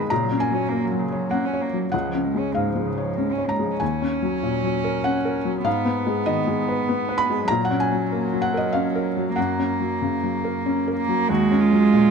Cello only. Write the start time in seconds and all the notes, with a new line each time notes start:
0.10 C#3
0.24 F#3
0.38 A#3
0.54 C#4
0.69 A#3
0.84 F#3
0.99 C#3
1.15 F#3
1.30 A#3
1.45 C#4
1.62 A#3
1.77 F#3
1.92 C#3
2.07 F3
2.24 G#3
2.38 C#4
2.54 G#3
2.69 F3
2.85 C#3
3.00 F3
3.16 G#3
3.32 C#4
3.47 G#3
3.63 F3
3.77 C#4
5.64 B3
7.47 F#3
9.36 A#3
10.96 A#3
11.28 G#3